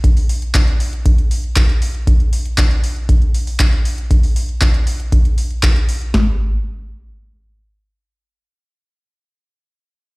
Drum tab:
HH |xooxxxoxxxoxxxox|xxoxxxoxxxooxxox|xooxxxoxxxoxxxox|----------------|
CP |----x-------x---|----x-------x---|----x-------x---|----------------|
SD |----------------|----------------|----------------|o---------------|
BD |o---o---o---o---|o---o---o---o---|o---o---o---o---|o---------------|

HH |----------------|
CP |----------------|
SD |----------------|
BD |----------------|